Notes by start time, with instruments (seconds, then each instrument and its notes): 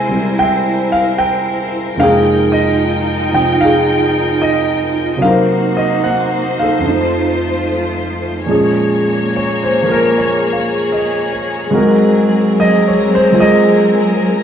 Already playing: grand piano C3 G#3 A#3 E4 A#4 G#5, string section E4 A#4 C5
0.09 grand piano G3 C4
0.39 grand piano E5 G5
0.92 grand piano F5
1.18 grand piano G5
1.96 grand piano F2 C3 G#3 A#3 D#4 F5, string section D#4 F4 G5
2.01 grand piano G#4 G5
2.52 grand piano D#5
3.32 grand piano C3 F3 C4 F4 G5
3.61 grand piano F5
3.65 grand piano G#4
4.42 grand piano D#5
5.16 grand piano C3 F#3
5.20 string section A#3 D#4 F#4 C5, grand piano A#3 F5
5.25 grand piano D#4 A#4 C5
5.77 grand piano D#5
6.04 grand piano F#5
6.59 grand piano A4 F5
6.79 grand piano F2 F3
6.83 string section A3 F4, grand piano A3 D#4
6.89 grand piano C5
8.45 grand piano A#2 F3 G#3, string section A#3 G#4 C#5
8.50 grand piano C#4 G#4
9.36 grand piano C#5
9.63 grand piano C5
9.82 grand piano F3 A#3 A#4
9.92 grand piano A#4
10.18 grand piano C#5
10.53 grand piano F5
10.92 grand piano D#5
11.32 grand piano C#5
11.70 grand piano G#2 G#3 C4 F#4, string section F#3 C4 A#4
11.75 grand piano A#4
12.60 grand piano D#5
12.88 grand piano C#5
13.15 grand piano C5
13.32 grand piano G#3 A#3 F4 G#4
13.40 grand piano D#5